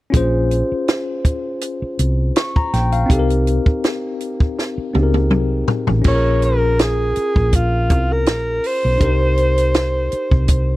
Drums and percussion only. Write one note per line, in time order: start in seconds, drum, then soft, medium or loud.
0.14 kick medium
0.14 closed hi-hat medium
0.51 closed hi-hat medium
0.88 snare medium
0.88 closed hi-hat medium
1.25 kick medium
1.25 closed hi-hat medium
1.61 closed hi-hat medium
1.99 closed hi-hat medium
2.36 snare loud
2.36 closed hi-hat medium
2.56 kick medium
2.73 snare soft
2.73 closed hi-hat medium
2.92 closed hi-hat medium
3.10 kick medium
3.10 closed hi-hat medium
3.30 closed hi-hat medium
3.47 closed hi-hat medium
3.66 kick medium
3.84 snare medium
3.84 closed hi-hat medium
4.20 closed hi-hat medium
4.40 kick medium
4.59 snare soft
4.95 high tom medium
5.14 high tom medium
5.31 mid tom medium
5.68 floor tom medium
5.87 floor tom medium
6.04 kick medium
6.04 crash medium
6.42 closed hi-hat medium
6.79 snare medium
6.79 closed hi-hat medium
7.16 closed hi-hat medium
7.36 kick medium
7.52 kick medium
7.52 closed hi-hat medium
7.90 kick medium
7.90 closed hi-hat medium
8.26 snare loud
8.26 closed hi-hat medium
8.64 open hi-hat medium
9.00 kick medium
9.00 closed hi-hat medium
9.37 closed hi-hat medium
9.57 closed hi-hat medium
9.74 snare medium
9.74 closed hi-hat medium
10.12 closed hi-hat medium
10.31 kick medium
10.48 kick medium
10.48 closed hi-hat medium